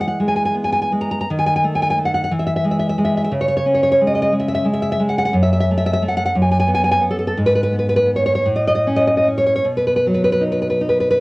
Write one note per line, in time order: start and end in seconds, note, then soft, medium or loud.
0.00 1.22 E3 medium
0.00 0.19 G#3 soft
0.00 0.06 F#5 medium
0.07 0.18 F#5 medium
0.20 0.91 G#3 medium
0.28 0.35 G#5 medium
0.36 0.44 G#5 medium
0.45 0.55 G#5 medium
0.54 1.27 B3 medium
0.64 0.71 G#5 medium
0.72 0.81 G#5 loud
0.82 0.91 G#5 medium
0.92 1.24 G#3 medium
1.01 1.10 A#5 medium
1.11 1.19 A#5 medium
1.21 1.28 A#5 medium
1.30 2.29 D#3 medium
1.39 1.45 G#5 medium
1.46 1.54 G#5 loud
1.56 1.63 G#5 medium
1.64 1.97 A3 medium
1.75 1.81 G#5 medium
1.82 1.89 G#5 medium
1.90 1.97 G#5 medium
1.98 2.28 A3 soft
2.05 2.13 F#5 medium
2.14 2.22 F#5 medium
2.24 2.31 F#5 medium
2.31 3.30 E3 medium
2.39 2.45 E5 medium
2.46 2.55 E5 medium
2.56 2.64 E5 medium
2.64 2.97 G#3 medium
2.71 2.78 E5 medium
2.79 2.88 E5 medium
2.89 2.98 E5 medium
2.98 3.29 G#3 medium
3.04 3.15 E5 medium
3.17 3.23 E5 medium
3.24 3.33 E5 medium
3.31 5.31 C#3 medium
3.41 3.47 C#5 medium
3.48 3.55 C#5 medium
3.57 3.66 C#5 medium
3.66 4.67 C#4 medium
3.74 3.82 C#5 medium
3.83 3.90 C#5 medium
3.92 4.01 C#5 loud
4.01 4.31 G#3 medium
4.07 4.14 D#5 medium
4.15 4.21 D#5 medium
4.22 4.32 D#5 loud
4.32 4.63 G#3 medium
4.39 4.47 E5 medium
4.48 4.53 E5 loud
4.55 4.65 E5 medium
4.65 4.99 G#3 medium
4.73 4.81 E5 loud
4.82 4.91 E5 medium
4.92 5.01 E5 loud
5.00 5.32 G#3 medium
5.09 5.17 F#5 loud
5.18 5.24 F#5 loud
5.25 5.35 F#5 loud
5.33 6.32 F#2 medium
5.43 5.52 E5 medium
5.53 5.59 E5 loud
5.61 5.70 E5 medium
5.71 6.01 A3 medium
5.78 5.85 E5 loud
5.86 5.92 E5 loud
5.93 6.03 E5 loud
6.02 6.33 A3 medium
6.08 6.16 F#5 medium
6.17 6.24 F#5 loud
6.26 6.35 F#5 loud
6.35 7.37 F#2 medium
6.42 6.50 G#5 loud
6.51 6.58 G#5 loud
6.60 6.69 G#5 loud
6.67 6.99 B3 medium
6.74 6.83 G#5 loud
6.84 6.90 G#5 loud
6.91 7.03 G#5 loud
7.00 7.34 B3 medium
7.11 7.18 A4 medium
7.19 7.26 A4 medium
7.27 7.38 A4 medium
7.37 8.46 G#2 medium
7.46 7.54 B4 loud
7.55 7.62 B4 loud
7.63 7.74 B4 loud
7.73 8.05 B3 medium
7.79 7.88 B4 medium
7.89 7.95 B4 loud
7.96 8.10 B4 loud
8.06 8.43 B3 medium
8.16 8.25 C#5 medium
8.26 8.34 C#5 medium
8.35 8.48 C#5 loud
8.46 9.59 A2 medium
8.56 8.66 D#5 medium
8.67 8.74 D#5 loud
8.75 8.87 D#5 loud
8.87 9.27 C#4 medium
8.96 9.06 D#5 loud
9.07 9.16 D#5 loud
9.17 9.27 D#5 loud
9.28 9.62 C#4 medium
9.38 9.45 C#5 loud
9.46 9.54 C#5 medium
9.56 9.65 C#5 medium
9.64 11.20 B2 medium
9.77 9.86 B4 medium
9.87 9.95 B4 medium
9.96 10.05 B4 medium
10.07 11.20 F#3 medium
10.14 10.23 B4 medium
10.24 10.31 B4 medium
10.32 10.43 B4 loud
10.41 10.80 D#4 medium
10.52 10.61 B4 medium
10.62 10.69 B4 medium
10.70 10.81 B4 medium
10.81 11.19 D#4 medium
10.89 10.99 B4 medium
11.00 11.09 B4 medium
11.11 11.20 B4 medium